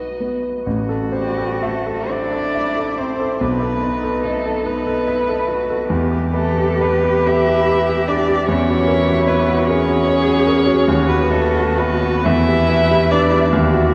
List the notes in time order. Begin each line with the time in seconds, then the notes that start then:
Already playing: B1 B3 F#4 B4 D#5
0.20 B3
0.66 A1 F#4
0.89 A4
1.12 G3 G4 C5
1.38 A4
1.62 A3 A4 E5
1.86 A4
2.09 D4 E4 C5 D5
2.32 A4
2.55 E5
2.77 A4
2.98 C4 C5
3.20 A4
3.40 B1 B3 D#4 B4
3.62 A4
3.83 B4
4.03 A4
4.23 A3 A4 D#5
4.46 A4
4.65 B3 D#4 B4
4.87 A4
5.07 E4 D#5
5.29 A4
5.47 F#4 B4
5.70 A4
5.88 E2 G4
6.11 G4
6.33 A3 A4 B4
6.58 G4
6.80 B3 B4
7.04 G4
7.27 E4 B4 E5
7.48 G4
7.69 B4
7.89 G4
8.08 D4 B4 D5
8.29 G4
8.47 E2 C#4 E4 C#5
8.68 F#4
8.87 A#4
9.08 F#4
9.27 B3 B4 C#5
9.47 F#4
9.67 C#4 G#4 A#4 C#5
9.89 F#4
10.08 C#5
10.27 F#4
10.47 A#4
10.66 F#4
10.86 D#2 F#4
11.08 B3 F#4 B4
11.30 A3 A4 B4
11.55 F#4
11.79 B3 B4
12.03 F#4
12.24 E2 E4 E5
12.48 G4
12.69 B4
12.91 G4
13.11 D4 B4 D5
13.32 G4
13.52 D#2 F#4
13.73 F#4